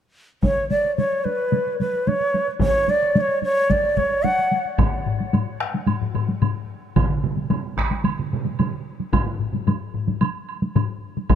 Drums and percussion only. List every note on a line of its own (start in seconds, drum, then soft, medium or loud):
0.43 taiko medium
0.43 taiko high medium
0.57 taiko high soft
0.71 taiko high soft
0.84 taiko high soft
0.98 taiko high medium
1.12 taiko high soft
1.25 taiko high soft
1.52 taiko high medium
1.67 taiko high soft
1.80 taiko high soft
1.93 taiko high soft
2.07 taiko high medium
2.20 taiko high soft
2.34 taiko high soft
2.48 taiko high soft
2.60 taiko medium
2.60 taiko high medium
2.88 taiko high soft
3.02 taiko high soft
3.16 taiko high medium
3.29 taiko high soft
3.42 taiko high soft
3.69 taiko medium
3.69 taiko high medium
3.83 taiko high soft
3.97 taiko medium
3.97 taiko high soft
4.11 taiko high soft
4.25 taiko high medium
4.38 taiko high soft
4.52 taiko high soft
4.65 taiko high soft
4.78 taiko medium
4.78 taiko low-mid medium
4.78 taiko high medium
4.78 high woodblock soft
5.06 taiko low-mid medium
5.20 taiko high soft
5.33 taiko low-mid medium
5.33 taiko high medium
5.33 high woodblock soft
5.61 taiko rim medium
5.74 taiko high soft
5.87 taiko low-mid medium
5.87 taiko high medium
5.87 high woodblock soft
6.02 taiko low-mid medium
6.15 taiko low-mid medium
6.15 high woodblock soft
6.28 taiko high soft
6.42 taiko low-mid medium
6.42 taiko high medium
6.42 high woodblock soft
6.96 taiko medium
6.96 taiko mid medium
6.96 taiko high medium
6.96 high woodblock medium
7.24 taiko mid medium
7.37 taiko high soft
7.50 taiko mid loud
7.50 taiko high medium
7.50 high woodblock soft
7.77 taiko rim medium
7.77 taiko medium
7.91 taiko high soft
8.04 taiko mid medium
8.04 taiko high medium
8.04 high woodblock medium
8.19 taiko mid medium
8.33 taiko mid medium
8.45 taiko high soft
8.59 taiko mid medium
8.59 taiko high medium
8.59 high woodblock soft
9.00 taiko high soft
9.13 taiko medium
9.13 taiko low-mid medium
9.13 taiko high medium
9.13 high woodblock medium
9.27 taiko low-mid medium
9.40 taiko low-mid medium
9.53 taiko low-mid medium
9.53 taiko high soft
9.67 taiko low-mid medium
9.67 taiko high medium
9.67 high woodblock soft
9.94 taiko low-mid medium
10.08 taiko low-mid medium
10.08 taiko high soft
10.21 taiko high medium
10.21 high woodblock medium
10.49 high woodblock soft
10.62 taiko high soft
10.76 taiko low-mid medium
10.76 taiko high medium
10.76 high woodblock soft
11.17 taiko high soft
11.29 taiko medium
11.29 taiko low-mid medium
11.29 taiko mid medium
11.29 taiko high medium
11.29 high woodblock medium